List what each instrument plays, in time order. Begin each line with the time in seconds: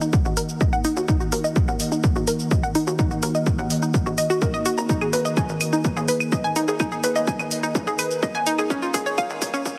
Already playing: synth drone D#3 A#3
0.01 synth pluck D#4, shaker
0.13 kick, shaker
0.25 analog synth bass A#1, synth pluck F#4, shaker
0.37 synth pluck A#4, open hi-hat, shaker
0.49 shaker
0.61 analog synth bass D#2, synth pluck D#5, kick, shaker
0.73 synth pluck F#5, shaker
0.85 synth pluck D#4, open hi-hat, shaker
0.97 analog synth bass D#2, synth pluck F#4, shaker
1.08 synth pluck D#4, kick, shaker
1.20 synth pluck F#4, shaker
1.32 analog synth bass D#2, synth pluck A#4, open hi-hat, shaker
1.44 synth pluck D#5, shaker
1.56 kick, shaker
1.68 analog synth bass D#2, synth pluck F#5, shaker
1.80 open hi-hat, shaker
1.92 synth pluck D#4, shaker
2.04 kick, shaker
2.16 analog synth bass A#1, synth pluck F#4, shaker
2.27 synth pluck A#4, open hi-hat, shaker
2.39 shaker
2.51 analog synth bass D#2, synth pluck D#5, kick, shaker
2.63 synth pluck F#5, shaker
2.75 synth pluck D#4, open hi-hat, shaker
2.87 analog synth bass D#2, synth pluck F#4, shaker
2.99 synth pluck D#4, kick, shaker
3.11 synth pluck F#4, shaker
3.23 analog synth bass D#2, synth pluck A#4, open hi-hat, shaker
3.35 synth pluck D#5, shaker
3.46 kick, shaker
3.59 analog synth bass D#2, synth pluck F#5, shaker
3.70 open hi-hat, shaker
3.82 synth pluck D#4, shaker
3.94 kick, shaker
4.06 analog synth bass A#1, synth pluck F#4, shaker
4.18 synth pluck D#5, open hi-hat, shaker
4.30 synth pluck F#4, shaker
4.42 analog synth bass D#2, synth pluck A#4, kick, shaker
4.54 synth pluck D#5, shaker
4.66 synth pluck F#4, open hi-hat, shaker
4.78 analog synth bass G#1, synth pluck A#5, shaker
4.89 synth pluck D#4, kick, shaker
5.01 synth pluck G#4, claves, shaker
5.13 analog synth bass G#1, synth pluck B4, open hi-hat, shaker
5.25 synth pluck D#5, shaker
5.37 synth pluck G#5, kick, mid tom, shaker
5.49 analog synth bass G#1, shaker
5.61 open hi-hat, claves, shaker
5.73 synth pluck D#4, shaker
5.85 kick, shaker
5.97 analog synth bass D#2, synth pluck G#4, mid tom, shaker
6.08 synth pluck B4, open hi-hat, shaker
6.20 claves, shaker
6.32 analog synth bass G#1, synth pluck D#5, kick, shaker
6.44 synth pluck G#5, shaker
6.56 synth pluck D#4, mid tom, open hi-hat, shaker
6.68 analog synth bass G#1, synth pluck G#4, shaker
6.80 synth pluck D#4, kick, claves, shaker
6.92 synth pluck G#4, shaker
7.04 analog synth bass G#1, synth pluck B4, open hi-hat, shaker
7.16 synth pluck D#5, mid tom, shaker
7.27 synth pluck G#5, kick, shaker
7.39 analog synth bass G#1, claves, shaker
7.51 open hi-hat, shaker
7.63 synth pluck D#4, shaker
7.75 kick, mid tom, shaker
7.87 analog synth bass D#2, synth pluck G#4, shaker
7.99 synth pluck B4, open hi-hat, claves, shaker
8.11 shaker
8.23 synth pluck D#5, kick, shaker
8.35 synth pluck G#5, mid tom, shaker
8.46 synth pluck D#4, open hi-hat, shaker
8.58 analog synth bass C#2, synth pluck G#4, claves, shaker
8.70 synth pluck C#4, kick, shaker
8.82 synth pluck F4, shaker
8.94 analog synth bass C#2, synth pluck G#4, kick, mid tom, open hi-hat, shaker
9.06 synth pluck C#5, shaker
9.18 synth pluck F5, kick, claves, shaker
9.30 analog synth bass C#2, shaker
9.42 kick, open hi-hat, shaker
9.54 synth pluck C#4, mid tom, shaker
9.66 kick, shaker